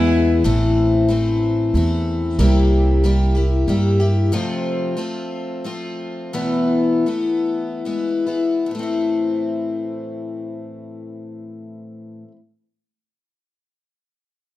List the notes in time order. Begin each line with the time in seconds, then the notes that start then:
Already playing: E2 E3 G#3 B3 E4 G#4 B4 G#5
0.44 A1 A2 E3 A3 C4 E4
1.08 E3 A3 C4 E4
1.74 E2 E3 A3 C4 E4
2.39 C2 C3 G3 A#3 E4 G4
3.04 G3 A#3 E4 G4
3.35 A#3 E4 G4
3.68 G2 G3 A#3 E4 G4
4.00 A#3 E4 G4
4.32 F2 C3 F3 A3 C4 F4
4.97 F3 A3 C4 F4
5.64 F3 A3 C4 F4
6.33 E2 B2 E3 A3 B3 E4
7.06 E3 A3 B3 E4
7.85 E3 G#3 B3 E4
8.27 E3 G#3 B3 E4
8.66 A2
8.71 E3 A3
8.79 C4 E4